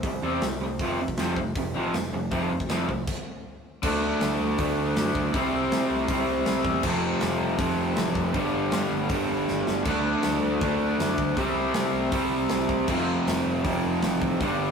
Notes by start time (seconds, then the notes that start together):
0.03 C2 C3 G3, kick, open hi-hat
0.22 E2 C3 G3 C4
0.41 C2 C3 G3, snare, open hi-hat
0.61 C2 C3 G3
0.79 F1 F2 C3 F3, kick, open hi-hat
1.00 F1 F2 C3
1.08 kick
1.17 F1 F2 C3 F3, snare, open hi-hat
1.36 F1 F2 C3, kick
1.55 F1 F2 C3, kick, open hi-hat
1.76 A1 F2 C3 F3
1.94 F1 F2 C3, snare, open hi-hat
2.13 F1 F2 C3
2.31 F1 F2 C3 F3, kick, open hi-hat
2.51 F1 F2 C3
2.60 kick
2.69 F1 F2 C3 F3, snare, open hi-hat
2.89 C2 F2 C3, kick
3.07 kick, crash
3.83 D2 D3 F#3 A3, kick, crash
3.87 D4
4.21 D2, snare, open hi-hat
4.40 D2
4.58 D2 D3 F#3 A3, kick, open hi-hat
4.62 D4
4.78 D2
4.96 F#2, snare, open hi-hat
5.15 D2, kick
5.34 C2 C3 G3 E4, kick, open hi-hat
5.38 C4
5.53 C2
5.70 C3, snare, open hi-hat
5.90 C2
6.08 C2 C3 G3 E4, kick, open hi-hat
6.13 C4
6.28 C2
6.46 C2, snare, open hi-hat
6.64 E2, kick
6.83 F1 F2 C3 F3 A3 C4, kick, crash
7.20 F1, snare, open hi-hat
7.40 F1
7.58 F1 F2 C3 F3 A3 C4, kick, open hi-hat
7.77 F1
7.96 A1, snare, open hi-hat
8.15 F1, kick
8.33 G1 G2 D3 G3 B3 D4, kick, open hi-hat
8.54 G1
8.71 G2, snare, open hi-hat
8.92 G1
9.09 G1 G2 D3 B3 D4, kick, open hi-hat
9.14 G3
9.30 G1
9.48 G1, snare
9.67 G1, snare
9.85 D2 D3 F#3 A3 D4, kick, crash
10.22 D2, snare, open hi-hat
10.44 D2
10.61 D2 D3 F#3 A3 D4, kick, open hi-hat
10.80 D2
11.00 F#2, snare, open hi-hat
11.18 D2, kick
11.37 C2 C3 G3 E4, kick, open hi-hat
11.41 C4
11.55 C2
11.74 C3, snare, open hi-hat
11.93 C2
12.12 C2 C3 G3 C4 E4, kick, open hi-hat
12.30 C2
12.49 C2, snare, open hi-hat
12.68 C2, kick
12.88 F1 F2 C3 F3 A3 C4, kick, crash
13.27 F1, snare, open hi-hat
13.46 F1
13.64 F1 F2 C3 F3 A3 C4, kick, open hi-hat
13.85 F1
14.02 A1, snare, open hi-hat
14.22 A1, kick
14.40 G1 G2 D3 B3 D4, kick, open hi-hat
14.45 G3
14.58 G1